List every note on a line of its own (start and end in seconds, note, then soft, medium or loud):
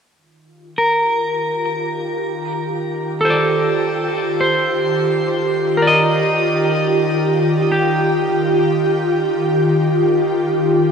0.11 10.92 D#3 medium
0.18 10.92 F4 medium
0.52 10.92 G4 medium
0.78 2.53 A#4 medium
3.21 4.95 A4 medium
3.25 4.39 C5 soft
3.30 5.00 D5 soft
4.41 5.82 C5 medium
5.77 7.52 A#4 soft
5.82 7.54 D5 soft
5.87 7.57 D#5 soft
7.72 9.45 G4 soft